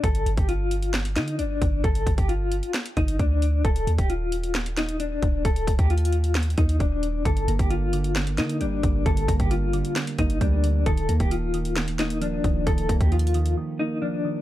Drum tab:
HH |x--x--x--x--x-----x--x--x--x--x--x--x-----x-----|x--x--x--x--x-----x--x--x--x--x--x--x-----x-----|x--x--x--x--x-----x--x--x--x--x--x--x-----x-----|x--x--x--x--x-x-x-x--x--x-x-x-x--x--x-----x-----|
SD |------------------------o-----o-----------------|------------------------o-----------------------|------------------------o-----o-----------------|------------------------o-----------------------|
BD |o--------o--------------------------------o-----|o-----o--o--------------------o-----o-----------|o--------o--------------------------------o-----|o-----o--o--------------------o-----o-----------|

HH |x--x--x--x--x-----x--x--x--x--x--x--x-----x-----|x--x--x--x--x-----x--x--x--x--x--x--x-----x-----|x--x--x--x--x-----x--x--x--x--x--x--x-----x-----|x--x--x--x--x-x-x-x--x--------------------------|
SD |------------------------o-----o-----------------|------------------------o-----------------------|------------------------o-----o-----------------|------------------------------------------------|
BD |o--------o--------------------------------o-----|o-----o--o--------------------o-----o-----------|o--------o--------------------------------o-----|o-----o--o--------------------------------------|